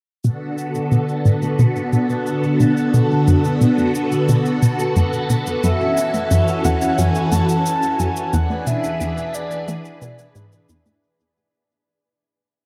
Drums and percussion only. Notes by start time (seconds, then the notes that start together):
0.24 high conga, shaker
0.58 shaker
0.75 shaker
0.92 shaker
1.09 shaker
1.25 shaker
1.42 high conga, shaker
1.59 shaker
1.76 shaker
1.93 shaker
2.10 shaker
2.27 shaker
2.43 shaker
2.60 high conga, shaker
2.77 shaker
2.94 shaker
3.28 shaker
3.44 shaker
3.61 shaker
3.78 high conga, shaker
3.95 shaker
4.12 shaker
4.29 shaker
4.46 shaker
4.62 shaker
4.79 shaker
4.96 high conga, shaker
5.13 shaker
5.30 shaker
5.47 shaker
5.64 shaker
5.97 shaker
6.14 high conga, shaker
6.31 shaker
6.48 shaker
6.65 shaker
6.81 shaker
6.98 shaker
7.15 shaker
7.32 high conga, shaker
7.49 shaker
7.66 shaker
7.83 shaker
8.00 shaker
8.16 shaker
8.33 shaker
8.50 high conga
8.67 shaker
8.84 shaker
9.01 shaker
9.18 shaker
9.34 shaker
9.51 shaker
9.68 high conga, shaker
9.85 shaker
10.02 shaker
10.19 shaker
10.36 shaker
10.52 shaker
10.69 shaker
10.86 high conga, shaker